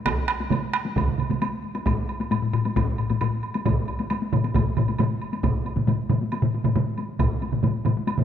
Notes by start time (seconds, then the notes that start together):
0.05 taiko rim, taiko, taiko high, high woodblock
0.28 taiko rim, high woodblock
0.40 taiko high, high woodblock
0.50 taiko mid, taiko high, high woodblock
0.74 taiko rim, high woodblock
0.86 taiko high
0.96 taiko, taiko mid, taiko high, high woodblock
1.08 taiko mid
1.18 taiko mid, high woodblock
1.30 taiko mid, taiko high, high woodblock
1.42 taiko high, high woodblock
1.75 taiko high, high woodblock
1.86 taiko, taiko low-mid, taiko high, high woodblock
2.09 high woodblock
2.20 taiko high, high woodblock
2.31 taiko low-mid, taiko high, high woodblock
2.42 taiko low-mid
2.53 taiko low-mid, high woodblock
2.65 taiko high, high woodblock
2.76 taiko, taiko low-mid, taiko high, high woodblock
2.98 taiko low-mid, high woodblock
3.10 taiko low-mid, taiko high, high woodblock
3.21 taiko low-mid, taiko high, high woodblock
3.43 high woodblock
3.54 taiko high, high woodblock
3.65 taiko, taiko low-mid, taiko mid, taiko high, high woodblock
3.88 high woodblock
3.99 taiko high, high woodblock
4.10 taiko high, high woodblock
4.22 taiko high
4.33 taiko low-mid, taiko mid, high woodblock
4.44 taiko high, high woodblock
4.54 taiko, taiko low-mid, taiko mid, taiko high, high woodblock
4.77 taiko low-mid, taiko mid, high woodblock
4.88 taiko high, high woodblock
4.99 taiko low-mid, taiko mid, taiko high, high woodblock
5.21 high woodblock
5.33 taiko high, high woodblock
5.43 taiko, taiko low-mid, taiko mid, taiko high, high woodblock
5.66 taiko high, high woodblock
5.77 taiko low-mid, taiko mid, taiko high
5.87 taiko low-mid, taiko mid, taiko high, high woodblock
6.10 taiko low-mid, taiko mid, taiko high, high woodblock
6.21 taiko high
6.32 taiko high, high woodblock
6.42 taiko low-mid, taiko mid
6.55 taiko high
6.64 taiko low-mid, taiko mid, taiko high, high woodblock
6.76 taiko low-mid, taiko mid, taiko high, high woodblock
6.98 taiko high, high woodblock
7.19 taiko, taiko low-mid, taiko mid, taiko high, high woodblock
7.42 taiko high, high woodblock
7.52 taiko low-mid, taiko mid, taiko high
7.63 taiko low-mid, taiko mid, taiko high, high woodblock
7.85 taiko low-mid, taiko mid, taiko high, high woodblock
7.97 taiko high
8.07 taiko high, high woodblock
8.18 taiko low-mid, taiko mid